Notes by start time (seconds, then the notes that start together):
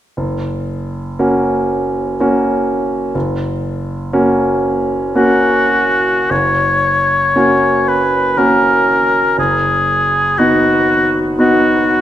0.17 F#1
1.19 A#3 C#4 F#4
2.20 A#3 C#4 F#4
3.15 F#1
4.13 A#3 C#4 F#4
5.15 A#3 C#4 F#4
6.30 F#1 C#5
7.36 A#3 C#4 F#4
7.88 B4
8.37 A#3 C#4 F#4 A#4
9.38 F#1 G#4
10.38 B3 D#4 F#4
11.39 B3 D#4 F#4